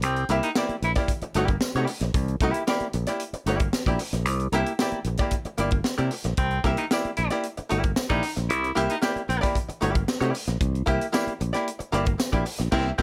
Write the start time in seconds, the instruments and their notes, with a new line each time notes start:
0.02 fingered electric bass C2, baritone saxophone C4, closed hi-hat
0.16 closed hi-hat
0.29 fingered electric bass C2, hollow-body jazz guitar A#3 E4 G4 E5, closed hi-hat
0.43 baritone saxophone D#4, closed hi-hat
0.56 hollow-body jazz guitar A#3 E4 G4 D5, snare, tambourine
0.69 muted fingered electric bass stroke, closed hi-hat
0.82 fingered electric bass A#1, baritone saxophone E4, muted hollow-body jazz guitar stroke, closed hi-hat
0.95 hollow-body jazz guitar A#3 E4 G4 D5, kick, snare, closed hi-hat
1.08 kick, closed hi-hat
1.21 muted fingered electric bass stroke, muted hollow-body jazz guitar stroke, closed hi-hat
1.34 fingered electric bass G1, hollow-body jazz guitar A#3 E4 G4 D5, closed hi-hat
1.48 muted hollow-body jazz guitar stroke, kick, closed hi-hat
1.61 muted hollow-body jazz guitar stroke, snare, tambourine
1.75 fingered electric bass C3, hollow-body jazz guitar A#3 E4 G4 D5, closed hi-hat
1.87 muted hollow-body jazz guitar stroke, open hi-hat
2.01 fingered electric bass A#1, muted hollow-body jazz guitar stroke, snare, closed hi-hat
2.14 fingered electric bass C2, kick, closed hi-hat
2.28 closed hi-hat
2.40 fingered electric bass C2, hollow-body jazz guitar A#3 E4 G4 E5, kick, closed hi-hat
2.54 closed hi-hat
2.67 hollow-body jazz guitar A#3 E4 G4 D5, snare, tambourine
2.80 muted fingered electric bass stroke, closed hi-hat
2.93 fingered electric bass A#1, muted hollow-body jazz guitar stroke, closed hi-hat
3.06 hollow-body jazz guitar A#3 E4 G4 D5, snare, closed hi-hat
3.20 closed hi-hat
3.33 muted fingered electric bass stroke, muted hollow-body jazz guitar stroke, closed hi-hat
3.46 fingered electric bass G1, hollow-body jazz guitar A#3 E4 G4 D5, closed hi-hat
3.60 muted hollow-body jazz guitar stroke, kick, closed hi-hat
3.73 muted fingered electric bass stroke, muted hollow-body jazz guitar stroke, snare, tambourine
3.86 fingered electric bass A#1, hollow-body jazz guitar A#3 E4 G4 D5, kick, closed hi-hat
3.99 muted hollow-body jazz guitar stroke, open hi-hat
4.13 fingered electric bass A#1, muted hollow-body jazz guitar stroke, snare, closed hi-hat
4.25 fingered electric bass C2, closed hi-hat
4.40 closed hi-hat
4.52 fingered electric bass C2, hollow-body jazz guitar A#3 E4 G4 E5, closed hi-hat
4.66 closed hi-hat
4.79 hollow-body jazz guitar A#3 E4 G4 D5, snare, tambourine
4.91 muted fingered electric bass stroke, closed hi-hat
5.04 fingered electric bass A#1, muted hollow-body jazz guitar stroke, closed hi-hat
5.17 hollow-body jazz guitar A#3 E4 G4 D5, kick, snare, closed hi-hat
5.31 kick, closed hi-hat
5.45 muted fingered electric bass stroke, muted hollow-body jazz guitar stroke, closed hi-hat
5.58 fingered electric bass G1, hollow-body jazz guitar A#3 E4 G4 D5, closed hi-hat
5.71 muted hollow-body jazz guitar stroke, kick, closed hi-hat
5.84 muted hollow-body jazz guitar stroke, snare, tambourine
5.98 fingered electric bass C3, hollow-body jazz guitar A#3 E4 G4 D5, closed hi-hat
6.11 muted hollow-body jazz guitar stroke, open hi-hat
6.24 fingered electric bass A#1, muted hollow-body jazz guitar stroke, snare, closed hi-hat
6.37 fingered electric bass C2, baritone saxophone C4, kick, closed hi-hat
6.51 closed hi-hat
6.64 fingered electric bass C2, hollow-body jazz guitar A#3 E4 G4 E5, kick, closed hi-hat
6.77 baritone saxophone D#4, closed hi-hat
6.91 hollow-body jazz guitar A#3 E4 G4 D5, snare, tambourine
7.04 muted fingered electric bass stroke, closed hi-hat
7.17 fingered electric bass A#1, baritone saxophone E4, muted hollow-body jazz guitar stroke, closed hi-hat
7.30 hollow-body jazz guitar A#3 E4 G4 D5, snare, closed hi-hat
7.43 closed hi-hat
7.57 muted hollow-body jazz guitar stroke, muted fingered electric bass stroke, closed hi-hat
7.69 fingered electric bass G1, hollow-body jazz guitar A#3 E4 G4 D5, closed hi-hat
7.83 muted hollow-body jazz guitar stroke, kick, closed hi-hat
7.96 muted hollow-body jazz guitar stroke, snare, tambourine
8.09 fingered electric bass A#1, hollow-body jazz guitar A#3 E4 G4 D5, baritone saxophone D#4, kick, closed hi-hat
8.23 muted hollow-body jazz guitar stroke, open hi-hat
8.36 fingered electric bass A#1, muted hollow-body jazz guitar stroke, snare, closed hi-hat
8.49 fingered electric bass C2, baritone saxophone E4, closed hi-hat
8.64 closed hi-hat
8.75 fingered electric bass C2, hollow-body jazz guitar A#3 E4 G4 E5, closed hi-hat
8.89 baritone saxophone D#4, closed hi-hat
9.02 hollow-body jazz guitar A#3 E4 G4 D5, snare, tambourine
9.16 muted fingered electric bass stroke, closed hi-hat
9.28 fingered electric bass A#1, baritone saxophone C4, muted hollow-body jazz guitar stroke, closed hi-hat
9.41 hollow-body jazz guitar A#3 E4 G4 D5, kick, snare, closed hi-hat
9.55 kick, closed hi-hat
9.68 muted hollow-body jazz guitar stroke, muted fingered electric bass stroke, closed hi-hat
9.81 fingered electric bass G1, hollow-body jazz guitar A#3 E4 G4 D5, closed hi-hat
9.95 muted hollow-body jazz guitar stroke, kick, closed hi-hat
10.08 muted hollow-body jazz guitar stroke, snare, tambourine
10.20 fingered electric bass C3, hollow-body jazz guitar A#3 E4 G4 D5, closed hi-hat
10.34 muted hollow-body jazz guitar stroke, open hi-hat
10.48 fingered electric bass A#1, muted hollow-body jazz guitar stroke, snare, closed hi-hat
10.61 fingered electric bass C2, kick, closed hi-hat
10.75 closed hi-hat
10.86 fingered electric bass C2, hollow-body jazz guitar A#3 E4 G4 E5, kick, closed hi-hat
11.01 closed hi-hat
11.12 hollow-body jazz guitar A#3 E4 G4 D5, snare, tambourine
11.27 muted fingered electric bass stroke, closed hi-hat
11.40 fingered electric bass A#1, muted hollow-body jazz guitar stroke, closed hi-hat
11.53 hollow-body jazz guitar A#3 E4 G4 D5, snare, closed hi-hat
11.68 closed hi-hat
11.79 muted hollow-body jazz guitar stroke, muted fingered electric bass stroke, closed hi-hat
11.92 fingered electric bass G1, hollow-body jazz guitar A#3 E4 G4 D5, closed hi-hat
12.05 muted hollow-body jazz guitar stroke, kick, closed hi-hat
12.18 muted hollow-body jazz guitar stroke, snare, tambourine
12.32 fingered electric bass A#1, hollow-body jazz guitar A#3 E4 G4 D5, kick, closed hi-hat
12.45 muted hollow-body jazz guitar stroke, open hi-hat
12.59 fingered electric bass A#1, muted hollow-body jazz guitar stroke, snare, closed hi-hat
12.72 fingered electric bass C2, hollow-body jazz guitar A#3 E4 G4 E5, baritone saxophone C4, kick, snare, crash
12.98 fingered electric bass C2, hollow-body jazz guitar A#3, baritone saxophone C4, kick